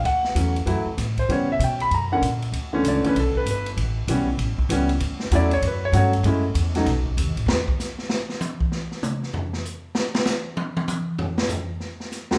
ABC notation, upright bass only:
X:1
M:4/4
L:1/8
Q:"Swing" 1/4=194
K:D
V:1 name="Upright bass" clef=bass
D,,2 E,,2 F,, z A,,2 | C,2 B,,2 F,,2 ^A,,2 | D,,2 C,, z B,,, z G,,,2 | A,,,2 B,,,2 A,,, z C,,2 |
D,,2 E,,2 F,,2 G,,2 | F,,2 E,,2 B,,,2 (3^D,, B,,, A,,, | E,, z6 z | z8 |
z8 | z8 |]